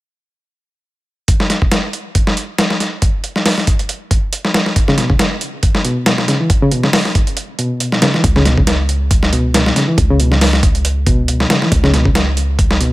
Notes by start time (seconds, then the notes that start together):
1.28 kick, closed hi-hat
1.40 snare
1.50 snare, closed hi-hat
1.62 kick
1.72 snare, closed hi-hat
1.93 closed hi-hat
2.15 kick, closed hi-hat
2.27 snare
2.37 closed hi-hat
2.58 snare, closed hi-hat
2.70 snare
2.80 snare, closed hi-hat
3.02 kick, closed hi-hat
3.24 closed hi-hat
3.36 snare
3.46 snare, open hi-hat
3.58 snare
3.67 kick, closed hi-hat
3.79 closed hi-hat
3.89 closed hi-hat
4.11 kick, closed hi-hat
4.33 closed hi-hat
4.45 snare
4.54 snare, closed hi-hat
4.66 snare
4.76 kick, closed hi-hat
4.88 C#3, snare
4.98 B2, snare, closed hi-hat
5.10 C#3, kick
5.19 snare, closed hi-hat
5.41 closed hi-hat
5.63 kick, closed hi-hat
5.75 snare
5.85 B2, closed hi-hat
6.06 snare, closed hi-hat
6.18 snare
6.28 C#3, snare, closed hi-hat
6.40 E3
6.50 kick, closed hi-hat
6.62 C#3
6.71 B2, closed hi-hat
6.83 C#3, snare
6.93 snare, open hi-hat
7.05 snare
7.15 kick, closed hi-hat
7.27 closed hi-hat
7.37 closed hi-hat
7.59 B2, closed hi-hat
7.80 closed hi-hat
7.92 snare
8.02 C#3, snare, closed hi-hat
8.14 E3, snare
8.24 C#2, kick, closed hi-hat
8.36 C#3, snare
8.45 B2, snare, closed hi-hat
8.58 C#3, kick
8.67 snare, closed hi-hat
8.89 closed hi-hat
9.11 kick, closed hi-hat
9.23 snare
9.33 B2, closed hi-hat
9.54 snare, closed hi-hat
9.66 snare
9.76 C#3, snare, closed hi-hat
9.88 E3
9.98 C#2, kick, closed hi-hat
10.10 C#3
10.20 B2, closed hi-hat
10.32 C#3, snare
10.41 snare, open hi-hat
10.53 snare
10.63 kick, closed hi-hat
10.75 closed hi-hat
10.85 closed hi-hat
11.06 B2, kick, closed hi-hat
11.28 closed hi-hat
11.40 snare
11.50 C#3, snare, closed hi-hat
11.62 E3, snare
11.72 C#2, kick, closed hi-hat
11.84 C#3, snare
11.93 B2, snare, closed hi-hat
12.05 C#3, kick
12.15 snare, closed hi-hat
12.37 closed hi-hat
12.59 kick, closed hi-hat
12.71 snare
12.80 B2, closed hi-hat